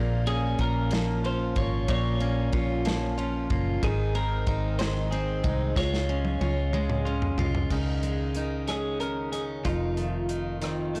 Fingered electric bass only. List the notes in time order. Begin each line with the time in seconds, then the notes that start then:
Already playing: A#1
0.59 A#1
1.56 G#1
1.88 A#1
2.53 A#1
3.51 F#1
3.83 G#1
4.47 G#1
5.44 C2
5.76 C#2
6.41 C#2
7.38 C2
7.70 C#2
9.65 F1